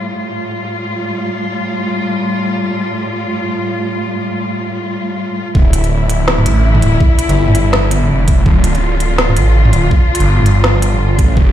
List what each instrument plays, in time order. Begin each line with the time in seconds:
Already playing: cello section A2 G3 F4
5.55 detuned saw bass D1, cello section D3 F3 E4, kick
5.73 closed hi-hat
5.84 closed hi-hat
6.10 closed hi-hat
6.28 snare
6.38 mid tom
6.46 detuned saw bass A1, closed hi-hat
6.75 mid tom
6.82 detuned saw bass D1, closed hi-hat
7.00 kick
7.19 closed hi-hat
7.29 detuned saw bass G1, closed hi-hat
7.48 mid tom
7.55 closed hi-hat
7.73 snare
7.91 closed hi-hat
8.02 mid tom
8.09 detuned saw bass F1
8.28 kick, closed hi-hat
8.46 detuned saw bass D1, cello section F4, kick
8.64 closed hi-hat
8.75 closed hi-hat
9.00 closed hi-hat
9.18 snare
9.29 mid tom
9.37 detuned saw bass A1, closed hi-hat
9.65 mid tom
9.73 detuned saw bass D1, closed hi-hat
9.91 kick
10.15 closed hi-hat
10.20 detuned saw bass G1, closed hi-hat
10.38 mid tom
10.46 closed hi-hat
10.64 snare
10.82 closed hi-hat
10.93 mid tom
11.18 detuned saw bass A1, kick, closed hi-hat
11.37 detuned saw bass F1, cello section A3 G4, kick